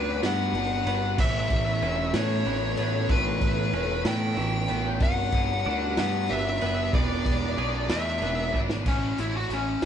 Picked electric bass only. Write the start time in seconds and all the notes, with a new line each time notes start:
Already playing: D2
0.23 G2
0.53 G1
0.85 G1
1.18 A1
1.50 A1
1.82 E1
2.14 A2
2.46 A1
2.78 A1
3.09 A1
3.41 A1
3.73 E1
4.05 A2
4.38 A1
4.70 A1
5.01 G1
5.33 G1
5.66 D2
5.98 G2
6.31 G1
6.62 F#1
6.93 E1
7.26 E1
7.57 B1
7.90 E2
8.22 E1
8.54 G#1
8.86 A1
9.19 A1
9.50 A1